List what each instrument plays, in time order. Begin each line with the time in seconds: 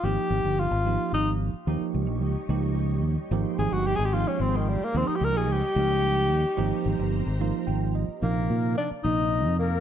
0.03 fingered electric bass G#1, tine electric piano F3 A#3 D#4 G4, tenor saxophone G4
0.30 fingered electric bass G#1
0.45 fingered electric bass G1
0.60 tenor saxophone F4
0.71 fingered electric bass G#1
0.86 tine electric piano F3 A#3 D#4 G4
1.13 fingered electric bass G#1, tenor saxophone D#4
1.54 muted fingered electric bass stroke
1.66 fingered electric bass D#2, tine electric piano F3 A#3 D#4 G4, string machine G4 D#5 C#6
1.81 muted fingered electric bass stroke
1.94 fingered electric bass C#2
2.08 fingered electric bass A#1
2.22 fingered electric bass C#2
2.49 fingered electric bass C#2, tine electric piano F3 A#3 D#4 G4
3.03 fingered electric bass D#2
3.17 muted fingered electric bass stroke
3.31 fingered electric bass G#1, tine electric piano F3 A#3 D#4 G4, string machine G#3 G5 C6
3.59 fingered electric bass G#1, tenor saxophone G#4
3.72 fingered electric bass G1, tenor saxophone F#4
3.87 tenor saxophone G4
3.96 fingered electric bass G#1, tenor saxophone G#4
4.05 tenor saxophone G4
4.14 tine electric piano F3 A#3 D#4 F4, tenor saxophone F4
4.28 tenor saxophone C#4
4.40 fingered electric bass G#1, tenor saxophone C4
4.56 tenor saxophone D#3
4.69 tenor saxophone G3
4.81 tenor saxophone A#3, muted fingered electric bass stroke
4.95 fingered electric bass D#2, tine electric piano F3 A#3 D#4 G4, tenor saxophone C4, string machine G4 D#5 C#6
5.07 tenor saxophone D#4, muted fingered electric bass stroke
5.16 tenor saxophone G4
5.21 fingered electric bass C#2, tenor saxophone A#4
5.35 fingered electric bass A#1, tenor saxophone G#4
5.49 fingered electric bass C#2, tenor saxophone G4
5.76 fingered electric bass C#2, tine electric piano F3 A#3 D#4 G4
6.31 fingered electric bass D#2
6.45 muted fingered electric bass stroke
6.57 fingered electric bass G#1, tine electric piano F3 A#3 D#4 G4, string machine C5 A#5
6.86 fingered electric bass G#1
6.99 fingered electric bass G1
7.27 fingered electric bass G#1
7.41 tine electric piano F3 A#3 D#4 F4
7.67 fingered electric bass G#1, tine electric piano G5
7.95 tine electric piano D#5
8.08 muted fingered electric bass stroke
8.22 fingered electric bass A#1, tine electric piano C3 F3 A#3 D#4, tenor saxophone A#3, flute A#4
8.50 fingered electric bass A#2
8.77 tenor saxophone D4, flute D5
8.91 muted fingered electric bass stroke
9.04 fingered electric bass A#1, tine electric piano C3 F3 A#3 D#4, tenor saxophone D#4, flute D#5
9.46 fingered electric bass F2
9.59 tenor saxophone A#3, flute A#4